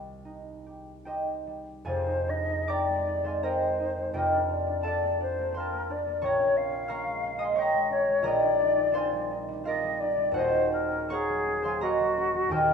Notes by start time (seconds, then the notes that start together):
Already playing: C2 G3 D#4 G4 A#4 C5 D#5 G5
0.25 D#4
0.66 G4
1.05 D#4 G4 C5 D#5 G5
1.47 G3
1.85 F1 F2 G#4 C5 D5 F5 G#5
2.07 D#4
2.28 D4 D#5
2.50 D#4
2.68 C4 D5 G5 A#5 D6
2.88 G#3
3.07 D#4
3.23 G#3 C5 F5 C6
3.28 G#5
3.43 C4 A#4 C5 D#5 G5 A#5
3.62 G#3
3.80 D#4
3.97 G#3
4.13 F1 F2 G4 A#4 C5 D#5 G5
4.33 D4
4.49 C4 D5
4.67 D4
4.81 C4 A4 F5 A5
4.86 D5
5.02 A#3
5.20 D4 C5
5.39 A#3
5.52 C4 C5 C6
5.57 A#4 F5 A5
5.73 A#3
5.90 D4 D5
6.07 A#3
6.21 A#1 C#5 G5 C#6
6.26 A#5
6.40 C#4
6.56 C4 F5
6.72 C#4
6.88 A#3 F5 A#5 C#6 F6
7.06 G#3
7.23 C#4
7.36 G#3 D#5 D#6
7.41 G#5 C6
7.53 A#3 C#5 C#6
7.58 D#5 G5 A#5
7.73 G#3
7.90 C#4 C#5
8.08 G#3
8.22 A#1 A#4 D5 D#5 A#5
8.27 G5
8.42 D#4
8.60 D4
8.77 D#4
8.92 C4 C5 F5 C6
8.98 G#5
9.12 G3
9.31 D#4
9.49 G3
9.64 C4 F4 A#4 D#5 F5
9.69 D5
9.84 G3
10.00 D#4 D5
10.17 G3
10.32 D#1 D#2 F#4 C5 F#5
10.36 C5 D#5
10.53 C#4
10.72 C4 A#4
10.92 C#4
11.09 A#3 G#4 C#5 F#5 C#6
11.13 A#5
11.29 F#3
11.46 C#4
11.62 F#3 C5 F5 C6
11.68 G#5
11.80 A#3 F#4 A#4 D#5 A#5
11.85 F#5
12.00 F#3
12.17 C#4
12.34 F#3
12.49 D#1 D#2 G4 A#4 G5
12.54 C5 D#5
12.70 C4